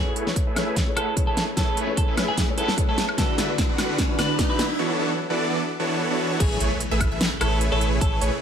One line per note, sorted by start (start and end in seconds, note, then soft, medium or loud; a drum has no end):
0.00 0.14 A3 medium
0.00 0.24 A3 medium
0.00 3.15 A3 medium
0.00 3.15 C#4 medium
0.00 0.14 E4 medium
0.00 0.24 E4 medium
0.00 0.12 G#4 loud
0.00 0.14 G#4 medium
0.00 0.24 G#4 medium
0.00 3.15 G#4 medium
0.00 0.14 B4 medium
0.00 0.24 B4 medium
0.00 4.75 B4 medium
0.00 0.14 C#5 loud
0.00 0.25 C#5 medium
0.00 riser medium
0.16 0.27 A3 medium
0.16 0.27 E4 medium
0.16 0.27 G#4 medium
0.16 0.27 B4 medium
0.16 0.27 C#5 medium
0.16 closed hi-hat medium
0.26 0.54 A3 medium
0.26 0.54 E4 medium
0.26 0.54 G#4 medium
0.26 0.54 B4 medium
0.26 0.55 C#5 medium
0.26 snare soft
0.36 kick medium
0.36 closed hi-hat medium
0.47 0.65 A3 loud
0.47 0.65 E4 medium
0.47 0.65 G#4 medium
0.47 0.65 B4 medium
0.47 0.65 E5 loud
0.55 0.84 A3 medium
0.55 0.84 E4 medium
0.55 0.85 G#4 medium
0.55 0.85 B4 medium
0.55 0.85 C#5 medium
0.55 snare soft
0.55 closed hi-hat medium
0.55 high woodblock medium
0.67 0.76 A3 medium
0.67 0.76 E4 medium
0.67 0.76 G#4 medium
0.67 0.76 B4 medium
0.67 0.76 E5 loud
0.76 kick medium
0.76 snare soft
0.76 closed hi-hat medium
0.86 1.14 A3 medium
0.86 1.14 E4 medium
0.86 1.15 G#4 medium
0.86 1.15 B4 medium
0.86 1.15 C#5 medium
0.96 1.07 A3 medium
0.96 1.07 E4 medium
0.96 1.07 G#4 medium
0.96 1.13 A4 medium
0.96 1.07 B4 medium
0.96 1.07 F#5 medium
0.96 closed hi-hat medium
0.96 high woodblock medium
1.16 1.54 A3 medium
1.16 1.54 E4 medium
1.16 1.55 G#4 medium
1.16 1.55 B4 medium
1.16 1.55 C#5 medium
1.16 kick medium
1.16 closed hi-hat medium
1.27 1.37 A3 medium
1.27 1.37 E4 medium
1.27 1.37 G#4 medium
1.27 1.43 A4 medium
1.27 1.37 B4 medium
1.27 1.37 C#5 loud
1.37 snare medium
1.37 closed hi-hat medium
1.56 1.85 A3 medium
1.56 1.75 A3 medium
1.56 1.85 E4 medium
1.56 1.75 E4 medium
1.56 1.75 G#4 medium
1.56 1.85 G#4 medium
1.56 1.78 A4 medium
1.56 1.75 B4 medium
1.56 1.86 B4 medium
1.56 1.75 C#5 loud
1.56 1.86 C#5 loud
1.56 kick medium
1.56 snare medium
1.56 closed hi-hat medium
1.77 1.88 A3 medium
1.77 1.88 E4 medium
1.77 1.88 G#4 medium
1.77 1.88 B4 medium
1.77 1.88 C#5 loud
1.77 closed hi-hat medium
1.87 2.15 A3 medium
1.87 2.15 E4 medium
1.87 2.15 G#4 medium
1.87 2.15 B4 medium
1.87 2.16 C#5 medium
1.97 2.14 A4 medium
1.97 kick loud
1.97 closed hi-hat medium
2.08 2.25 A3 loud
2.08 2.25 E4 medium
2.08 2.26 G#4 medium
2.08 2.26 B4 medium
2.08 2.25 E5 loud
2.16 2.45 A3 medium
2.16 2.45 E4 medium
2.16 2.46 G#4 medium
2.16 2.46 B4 medium
2.16 2.46 C#5 medium
2.16 snare medium
2.16 closed hi-hat medium
2.16 high woodblock medium
2.28 2.37 A3 medium
2.28 2.37 E4 medium
2.28 2.37 G#4 medium
2.28 2.44 G#4 medium
2.28 2.37 B4 medium
2.28 2.37 E5 loud
2.37 kick medium
2.37 snare medium
2.37 closed hi-hat medium
2.47 2.75 A3 medium
2.47 2.75 E4 medium
2.47 2.76 G#4 medium
2.47 2.76 B4 medium
2.47 2.76 C#5 medium
2.57 2.68 A3 medium
2.57 2.68 E4 medium
2.57 2.68 G#4 medium
2.57 2.74 A4 medium
2.57 2.68 B4 medium
2.57 2.68 F#5 medium
2.57 closed hi-hat medium
2.68 snare medium
2.77 3.15 A3 medium
2.77 3.16 E4 medium
2.77 3.16 G#4 medium
2.77 3.16 B4 medium
2.77 3.16 C#5 medium
2.77 kick loud
2.77 closed hi-hat medium
2.88 2.98 A3 loud
2.88 2.98 E4 medium
2.88 2.98 G#4 medium
2.88 3.04 A4 medium
2.88 2.98 B4 medium
2.88 2.98 C#5 loud
2.98 snare medium
2.98 closed hi-hat medium
3.09 high woodblock medium
3.17 3.46 D3 medium
3.17 3.36 D3 medium
3.17 4.77 F#3 medium
3.17 3.46 D4 medium
3.17 4.77 D4 medium
3.17 3.36 D4 medium
3.17 4.77 E4 medium
3.17 3.46 E4 medium
3.17 3.36 F#4 medium
3.17 3.47 F#4 medium
3.17 3.34 A4 loud
3.17 3.36 B4 medium
3.17 3.47 B4 loud
3.17 3.36 E5 loud
3.17 kick loud
3.17 snare medium
3.17 closed hi-hat medium
3.38 3.49 D3 medium
3.38 3.49 D4 medium
3.38 3.49 F#4 medium
3.38 3.49 B4 medium
3.38 3.49 E5 loud
3.38 snare medium
3.38 closed hi-hat medium
3.48 3.76 D3 medium
3.48 3.76 D4 medium
3.48 3.76 E4 medium
3.48 3.76 F#4 medium
3.48 3.77 B4 medium
3.58 kick loud
3.58 snare medium
3.58 closed hi-hat medium
3.69 3.87 D3 loud
3.69 3.87 D4 medium
3.69 3.87 F#4 medium
3.69 3.87 B4 medium
3.69 3.87 F#5 loud
3.77 4.06 D3 medium
3.77 4.07 D4 medium
3.77 4.07 E4 medium
3.77 4.07 F#4 medium
3.77 4.07 B4 medium
3.77 snare medium
3.77 closed hi-hat medium
3.77 high woodblock medium
3.89 3.98 D3 medium
3.89 3.98 D4 medium
3.89 3.98 F#4 medium
3.89 3.98 B4 medium
3.89 3.98 F#5 medium
3.98 kick loud
3.98 snare medium
3.98 closed hi-hat medium
4.08 4.36 D3 medium
4.08 4.36 D4 medium
4.08 4.37 E4 medium
4.08 4.37 F#4 medium
4.08 4.37 B4 medium
4.19 4.29 D3 medium
4.19 4.29 D4 medium
4.19 4.29 F#4 medium
4.19 4.29 B4 medium
4.19 4.35 B4 medium
4.19 4.29 A5 medium
4.19 snare medium
4.19 closed hi-hat medium
4.19 high woodblock medium
4.38 4.76 D3 medium
4.38 4.77 D4 medium
4.38 4.77 E4 medium
4.38 4.77 F#4 medium
4.38 4.77 B4 medium
4.38 kick loud
4.38 snare medium
4.38 closed hi-hat medium
4.50 4.59 D3 loud
4.50 4.59 D4 medium
4.50 4.59 F#4 medium
4.50 4.59 B4 medium
4.50 4.65 B4 medium
4.50 4.59 E5 loud
4.59 snare medium
4.59 closed hi-hat medium
4.79 4.97 E3 medium
4.79 4.97 B3 medium
4.79 4.97 D4 medium
4.79 4.97 F#4 medium
4.79 4.97 A4 medium
4.79 4.97 C#5 medium
4.99 5.10 E3 medium
4.99 5.10 B3 medium
4.99 5.10 D4 medium
4.99 5.10 F#4 medium
4.99 5.10 A4 medium
4.99 5.10 C#5 loud
5.30 5.48 E3 medium
5.30 5.48 B3 medium
5.30 5.48 D4 medium
5.30 5.48 F#4 medium
5.30 5.48 A4 medium
5.30 5.48 D5 loud
5.50 5.60 E3 medium
5.50 5.59 B3 medium
5.50 5.60 D4 medium
5.50 5.60 F#4 medium
5.50 5.59 A4 medium
5.50 5.60 D5 loud
5.80 6.08 E3 medium
5.80 6.08 B3 medium
5.80 6.08 D4 medium
5.80 6.08 F#4 medium
5.80 6.08 A4 medium
5.80 6.08 C#5 medium
6.10 6.38 E3 medium
6.10 6.38 B3 medium
6.10 6.38 D4 medium
6.10 6.38 F#4 medium
6.10 6.38 A4 medium
6.10 6.38 C#5 medium
6.40 6.58 A1 loud
6.40 8.42 B2 medium
6.40 6.58 A3 medium
6.40 8.42 A3 medium
6.40 8.42 C#4 medium
6.40 6.58 E4 medium
6.40 8.42 G#4 medium
6.40 6.56 G#4 loud
6.40 6.58 B4 medium
6.40 6.58 C#5 medium
6.40 kick loud
6.40 closed hi-hat medium
6.40 crash loud
6.40 impact medium
6.60 6.69 A1 loud
6.60 6.71 A3 medium
6.60 6.71 E4 medium
6.60 6.71 G#4 medium
6.60 6.71 B4 medium
6.60 6.71 C#5 loud
6.60 6.71 C#5 medium
6.60 closed hi-hat medium
6.80 closed hi-hat medium
6.91 7.09 A1 medium
6.91 7.09 A3 loud
6.91 7.09 E4 medium
6.91 7.09 G#4 medium
6.91 7.09 B4 medium
6.91 7.09 E5 loud
7.01 kick medium
7.01 closed hi-hat medium
7.01 high woodblock medium
7.11 7.19 A1 medium
7.11 7.21 A3 medium
7.11 7.21 E4 medium
7.11 7.21 G#4 medium
7.11 7.21 B4 medium
7.11 7.21 E5 loud
7.11 7.21 E5 medium
7.21 snare loud
7.21 closed hi-hat medium
7.41 7.70 A1 medium
7.41 7.69 A3 medium
7.41 7.69 E4 medium
7.41 7.69 G#4 medium
7.41 7.57 A4 medium
7.41 7.69 B4 medium
7.41 7.69 C#5 medium
7.41 closed hi-hat medium
7.41 high woodblock medium
7.61 closed hi-hat medium
7.72 7.99 A1 loud
7.72 7.99 A3 medium
7.72 7.99 E4 medium
7.72 7.99 G#4 medium
7.72 7.87 A4 loud
7.72 7.99 B4 medium
7.72 7.99 C#5 medium
7.81 closed hi-hat medium
8.01 8.20 A1 loud
8.01 8.23 A4 medium
8.01 8.19 C#5 medium
8.01 kick loud
8.01 closed hi-hat medium
8.21 8.30 A1 loud
8.21 8.32 A3 medium
8.21 8.32 E4 medium
8.21 8.32 G#4 medium
8.21 8.32 B4 medium
8.21 8.32 C#5 loud
8.21 8.32 C#5 medium
8.21 closed hi-hat medium